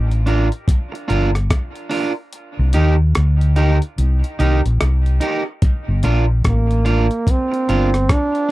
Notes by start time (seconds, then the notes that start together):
Already playing: A1
0.12 closed hi-hat
0.26 D4 F4 A#4, closed hi-hat
0.52 closed hi-hat
0.68 kick, closed hi-hat
0.92 muted clean electric guitar stroke, closed hi-hat
1.08 G1 D4 F4 A#4, closed hi-hat
1.35 cross-stick, closed hi-hat
1.50 kick, cross-stick, closed hi-hat
1.76 closed hi-hat
1.90 D4 F4 A#4, open hi-hat
2.33 closed hi-hat
2.59 C2
2.73 D#2 D#4 G4 A#4, closed hi-hat
3.15 D2, cross-stick, closed hi-hat
3.41 closed hi-hat
3.56 D#4 G4 A#4, closed hi-hat
3.82 closed hi-hat
3.98 C2, closed hi-hat
4.24 closed hi-hat
4.39 C2 D#4 G4 A#4, closed hi-hat
4.65 A#1, closed hi-hat
4.81 C2, cross-stick, closed hi-hat
5.06 closed hi-hat
5.20 D#4 G4 A#4, closed hi-hat
5.62 kick, closed hi-hat
5.88 G1
6.03 A#1 D4 F4 A#4, closed hi-hat
6.44 A1, kick, cross-stick, closed hi-hat
6.49 A#3
6.71 closed hi-hat
6.85 D4 F4 A#4, closed hi-hat
7.11 closed hi-hat
7.27 C4, kick, closed hi-hat
7.52 muted clean electric guitar stroke, closed hi-hat
7.69 G1 D4 F4 A#4, closed hi-hat
7.94 cross-stick, closed hi-hat
8.09 D4, kick, cross-stick, closed hi-hat
8.35 closed hi-hat